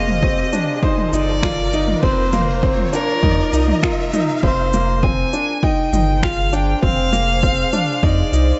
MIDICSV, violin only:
0, 0, Header, 1, 2, 480
1, 0, Start_track
1, 0, Tempo, 600000
1, 1626, Time_signature, 4, 2, 24, 8
1, 6876, End_track
2, 0, Start_track
2, 0, Title_t, "Violin"
2, 0, Program_c, 0, 40
2, 0, Note_on_c, 0, 75, 109
2, 665, Note_on_c, 0, 72, 92
2, 677, Note_off_c, 0, 75, 0
2, 908, Note_on_c, 0, 74, 108
2, 920, Note_off_c, 0, 72, 0
2, 1614, Note_off_c, 0, 74, 0
2, 1619, Note_on_c, 0, 72, 94
2, 2070, Note_off_c, 0, 72, 0
2, 2343, Note_on_c, 0, 70, 115
2, 3032, Note_off_c, 0, 70, 0
2, 3552, Note_on_c, 0, 72, 106
2, 4024, Note_on_c, 0, 80, 107
2, 4036, Note_off_c, 0, 72, 0
2, 4503, Note_on_c, 0, 79, 102
2, 4515, Note_off_c, 0, 80, 0
2, 4984, Note_on_c, 0, 77, 104
2, 4996, Note_off_c, 0, 79, 0
2, 5223, Note_on_c, 0, 79, 103
2, 5235, Note_off_c, 0, 77, 0
2, 5464, Note_off_c, 0, 79, 0
2, 5468, Note_on_c, 0, 77, 120
2, 6434, Note_on_c, 0, 74, 102
2, 6446, Note_off_c, 0, 77, 0
2, 6876, Note_off_c, 0, 74, 0
2, 6876, End_track
0, 0, End_of_file